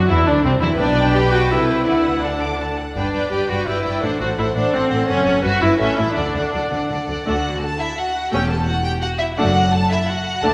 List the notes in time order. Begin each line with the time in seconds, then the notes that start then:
0.08 E2 E3 E4
0.26 D2 D3 D4
0.44 C2 C3 C4
0.62 E2 E3 E4
0.79 B1 B2 D4 B4 D5 G5
0.98 G5
1.15 G4 B5
1.32 F#4 D6
1.51 C2 C3 E4 A4
1.68 C5
1.86 D2 D3 E4 D5 F#5
2.04 F#5
2.22 D4 A4 A5
2.41 D6
2.59 A5
2.78 F#5
2.95 G1 G2 D4 B4 D5 G5
3.13 G1 G2 B4 D5 G5
3.31 G1 G2 G4 B4 D5 G5
3.49 G1 G2 F#4 B4 D5 G5
3.66 G1 G2 E4 B4 D5 G5
3.85 G1 G2 B4 D5 G5
4.02 A1 A2 D4 A4 C5 F#5
4.19 A1 A2 F#4 A4 C5 F#5
4.37 A1 A2 E4 A4 C5 F#5
4.55 A1 A2 D4 A4 C5 F#5
4.73 A1 A2 C4 A4 C5 F#5
4.90 A1 A2 A4 C5 F#5
5.08 F#1 F#2 C#4 A4 C#5 F#5
5.25 F#1 F#2 A4 C#5 F#5
5.43 G1 G2 F#4 B4 E5
5.61 G1 G2 E4 B4 E5
5.79 A1 A2 C#4 A4 E5
5.98 A1 A2 E4 A4 E5
6.16 D2 D3 D4 A4 D5 F#5
6.34 D2 D3 A4 D5 F#5
6.53 D2 D3 A4 D5 F#5
6.70 D2 D3 A4 D5 F#5
6.89 D2 D3 A4 D5 F#5
7.08 D2 D3 A4 D5 F#5
7.25 D2 D3 A3 D4 F#4 F#5
7.62 A4 A5
7.79 E4 E5
7.97 F#4 F#5
8.32 E1 E2 A3 C#4 G4 G5
8.49 A4 A5
8.66 F#4 F#5
8.84 G4 G5
9.01 F#4 F#5
9.18 E4 E5
9.36 F#1 F#2 A3 D4 F#4 F#5
9.72 A4 A5
9.90 E4 E5
10.09 F#4 F#5
10.43 D2 A3 D4 A4 A5